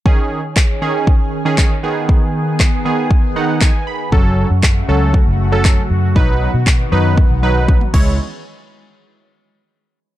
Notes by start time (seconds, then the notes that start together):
0.05 D#3 C#4 G#4, kick
0.56 kick, snare, clap
0.81 D#3 C#4 G#4
1.07 kick
1.45 D#3 C#4 G#4
1.58 kick, snare, clap
1.83 D#3 B3 G#4
2.09 kick
2.60 kick, snare, clap
2.85 D#3 B3 G#4
3.11 kick
3.36 D#3 B3 D#4 F#5
3.61 G#5, kick, snare, clap
3.87 B5
4.12 F#1 C#3 F#3 A3 C#4 F#4 A4, kick
4.50 F#2
4.63 kick, snare, clap
4.88 C#2 F#3 C#4 A4
5.14 kick
5.27 F#1
5.52 F#3 C#4 A4
5.65 kick, snare, clap
5.90 F#2
6.15 B1 D#3 F#3 B3 D#4 B4, kick
6.54 B2
6.67 kick, snare, clap
6.92 F#2 F#3 D#4 B4
7.18 kick
7.30 B1
7.42 F#3 D#4 B4
7.68 kick, high tom
7.81 mid tom
7.94 C#2 G#3 E4 C#5, kick, crash